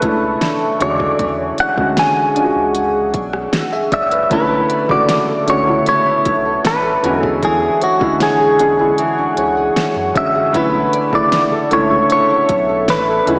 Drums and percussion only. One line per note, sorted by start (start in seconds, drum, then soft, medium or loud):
0.02 kick medium
0.02 closed hi-hat medium
0.41 snare loud
0.41 closed hi-hat medium
0.80 closed hi-hat medium
1.00 kick medium
1.19 kick loud
1.19 closed hi-hat medium
1.58 closed hi-hat medium
1.78 kick medium
1.97 snare loud
1.97 closed hi-hat medium
2.36 closed hi-hat medium
2.75 closed hi-hat medium
3.14 kick medium
3.14 closed hi-hat medium
3.33 cross-stick medium
3.53 snare loud
3.53 closed hi-hat medium
3.92 kick medium
3.92 closed hi-hat soft
4.11 closed hi-hat medium
4.31 kick loud
4.31 closed hi-hat medium
4.70 closed hi-hat medium
4.89 kick medium
5.09 snare loud
5.09 closed hi-hat medium
5.48 closed hi-hat medium
5.86 closed hi-hat medium
6.25 kick medium
6.25 closed hi-hat medium
6.65 snare loud
6.65 closed hi-hat medium
7.04 closed hi-hat medium
7.23 kick medium
7.43 kick loud
7.43 closed hi-hat medium
7.81 closed hi-hat medium
8.01 kick medium
8.20 snare loud
8.20 closed hi-hat medium
8.59 closed hi-hat medium
8.98 closed hi-hat medium
9.37 closed hi-hat medium
9.76 snare loud
9.76 closed hi-hat medium
10.15 kick medium
10.15 closed hi-hat medium
10.54 kick loud
10.54 closed hi-hat medium
10.93 closed hi-hat medium
11.13 kick loud
11.32 snare loud
11.32 closed hi-hat medium
11.71 closed hi-hat medium
12.10 closed hi-hat medium
12.49 kick medium
12.49 closed hi-hat medium
12.88 snare loud
12.88 closed hi-hat medium
13.27 closed hi-hat medium